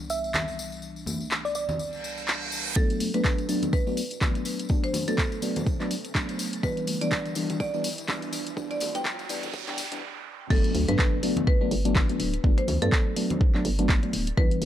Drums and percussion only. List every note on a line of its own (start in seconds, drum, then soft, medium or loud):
0.10 tambourine medium
0.24 tambourine soft
0.34 clap loud
0.34 tambourine soft
0.34 low conga medium
0.48 tambourine soft
0.59 tambourine medium
0.72 tambourine soft
0.82 tambourine soft
0.96 tambourine soft
1.06 tambourine loud
1.06 high conga medium
1.06 low conga medium
1.20 tambourine soft
1.31 clap loud
1.31 tambourine soft
1.45 tambourine soft
1.55 tambourine medium
1.69 tambourine soft
1.69 low conga medium
1.79 tambourine medium
1.93 tambourine soft
2.04 tambourine medium
2.17 tambourine soft
2.28 clap loud
2.28 tambourine soft
2.42 tambourine soft
2.52 tambourine medium
2.66 tambourine soft
2.76 kick loud
2.76 tambourine medium
2.90 closed hi-hat medium
2.90 tambourine soft
3.00 open hi-hat loud
3.00 tambourine medium
3.00 high conga medium
3.14 closed hi-hat medium
3.14 tambourine soft
3.24 kick loud
3.24 clap loud
3.24 tambourine medium
3.38 closed hi-hat soft
3.38 tambourine soft
3.49 open hi-hat loud
3.49 tambourine medium
3.63 closed hi-hat medium
3.63 tambourine soft
3.63 low conga medium
3.73 kick loud
3.73 tambourine medium
3.87 tambourine soft
3.97 open hi-hat loud
3.97 tambourine loud
4.10 closed hi-hat medium
4.10 tambourine soft
4.21 kick loud
4.21 clap loud
4.21 tambourine medium
4.21 low conga medium
4.35 closed hi-hat medium
4.35 tambourine soft
4.45 open hi-hat loud
4.45 tambourine medium
4.59 closed hi-hat medium
4.59 tambourine soft
4.69 kick loud
4.69 tambourine medium
4.84 closed hi-hat medium
4.84 tambourine soft
4.94 open hi-hat loud
4.94 tambourine loud
4.94 high conga medium
4.94 low conga medium
5.08 closed hi-hat medium
5.08 tambourine soft
5.18 kick loud
5.18 clap loud
5.18 tambourine medium
5.32 closed hi-hat soft
5.32 tambourine soft
5.42 open hi-hat loud
5.42 tambourine medium
5.56 closed hi-hat medium
5.56 tambourine soft
5.56 low conga medium
5.67 kick loud
5.67 tambourine soft
5.80 clap soft
5.80 tambourine soft
5.91 open hi-hat loud
5.91 tambourine medium
6.05 closed hi-hat medium
6.05 tambourine soft
6.15 kick loud
6.15 clap loud
6.15 tambourine medium
6.29 closed hi-hat medium
6.29 tambourine soft
6.39 open hi-hat loud
6.39 tambourine loud
6.53 closed hi-hat medium
6.53 tambourine soft
6.63 kick loud
6.63 tambourine medium
6.77 closed hi-hat medium
6.77 tambourine soft
6.87 open hi-hat loud
6.87 tambourine medium
6.87 high conga medium
7.01 closed hi-hat medium
7.01 tambourine soft
7.11 kick loud
7.11 clap loud
7.11 tambourine medium
7.26 closed hi-hat soft
7.26 tambourine soft
7.35 open hi-hat loud
7.35 tambourine loud
7.50 closed hi-hat medium
7.50 tambourine soft
7.50 low conga medium
7.60 kick loud
7.60 tambourine medium
7.74 tambourine soft
7.84 open hi-hat loud
7.84 tambourine medium
7.98 closed hi-hat medium
7.98 tambourine soft
8.08 kick loud
8.08 clap loud
8.08 tambourine medium
8.08 low conga medium
8.22 closed hi-hat medium
8.22 tambourine soft
8.33 open hi-hat loud
8.33 tambourine loud
8.47 closed hi-hat medium
8.47 tambourine soft
8.57 kick loud
8.57 tambourine medium
8.71 closed hi-hat medium
8.71 tambourine soft
8.80 open hi-hat loud
8.80 tambourine medium
8.80 high conga medium
8.80 low conga medium
8.95 closed hi-hat medium
8.95 tambourine soft
9.05 kick loud
9.05 clap loud
9.05 tambourine medium
9.19 closed hi-hat soft
9.19 tambourine soft
9.29 open hi-hat loud
9.29 tambourine loud
9.43 closed hi-hat medium
9.43 tambourine soft
9.43 low conga medium
9.53 kick loud
9.53 tambourine medium
9.68 clap soft
9.68 closed hi-hat soft
9.68 tambourine soft
9.78 open hi-hat loud
9.78 tambourine loud
9.92 closed hi-hat medium
9.92 tambourine soft
10.50 kick loud
10.50 crash loud
10.64 closed hi-hat medium
10.75 open hi-hat loud
10.75 high conga medium
10.88 closed hi-hat medium
10.99 kick loud
10.99 clap loud
11.23 open hi-hat loud
11.37 closed hi-hat medium
11.37 low conga loud
11.47 kick loud
11.71 open hi-hat loud
11.85 closed hi-hat medium
11.95 kick loud
11.95 clap loud
11.95 low conga loud
12.09 closed hi-hat medium
12.20 open hi-hat loud
12.34 closed hi-hat medium
12.44 kick loud
12.58 closed hi-hat medium
12.68 open hi-hat loud
12.68 high conga medium
12.68 low conga medium
12.82 closed hi-hat medium
12.92 kick loud
12.92 clap loud
13.16 open hi-hat loud
13.30 closed hi-hat medium
13.30 low conga medium
13.41 kick loud
13.55 clap soft
13.65 open hi-hat loud
13.79 closed hi-hat medium
13.89 kick loud
13.89 clap loud
14.03 closed hi-hat medium
14.13 open hi-hat loud
14.27 closed hi-hat medium
14.38 kick loud
14.51 closed hi-hat medium
14.62 open hi-hat loud